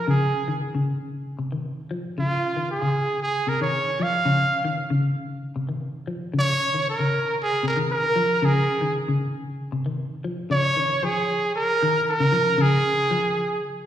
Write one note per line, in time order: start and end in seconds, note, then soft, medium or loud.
0.08 0.31 C#3 medium
0.08 0.58 G#4 medium
0.48 0.71 D#3 medium
0.75 0.98 C#3 medium
1.39 1.51 C3 medium
1.52 1.75 D#3 medium
1.91 2.14 F3 medium
2.18 2.41 C#3 medium
2.18 2.67 F4 medium
2.57 2.80 D#3 medium
2.71 3.19 G#4 medium
2.82 3.05 C#3 medium
3.23 3.50 G#4 medium
3.47 3.59 C3 medium
3.47 3.61 A#4 medium
3.61 3.84 D#3 medium
3.61 4.04 C#5 medium
4.00 4.23 F3 medium
4.00 4.79 F5 medium
4.25 4.48 C#3 medium
4.65 4.88 D#3 medium
4.90 5.14 C#3 medium
5.56 5.67 C3 medium
5.69 5.92 D#3 medium
6.07 6.31 F3 medium
6.34 6.57 C#3 medium
6.39 6.85 C#5 loud
6.74 6.97 D#3 medium
6.90 7.36 A#4 medium
6.99 7.22 C#3 medium
7.43 7.65 G#4 medium
7.63 7.75 C3 medium
7.68 7.79 A#4 medium
7.76 8.00 D#3 medium
7.91 8.46 A#4 medium
8.16 8.39 F3 medium
8.42 8.65 C#3 medium
8.42 8.96 G#4 medium
8.81 9.04 D#3 medium
9.08 9.31 C#3 medium
9.72 9.84 C3 medium
9.86 10.09 D#3 medium
10.24 10.48 F3 medium
10.50 10.73 C#3 medium
10.50 11.06 C#5 loud
10.76 11.00 D#3 medium
11.03 11.26 F3 medium
11.03 11.55 G#4 medium
11.56 12.04 A#4 medium
11.82 12.05 D#3 medium
12.10 12.63 A#4 medium
12.20 12.31 C#3 medium
12.32 12.56 F3 medium
12.58 12.81 C#3 medium
12.58 13.64 G#4 medium
13.11 13.34 F3 medium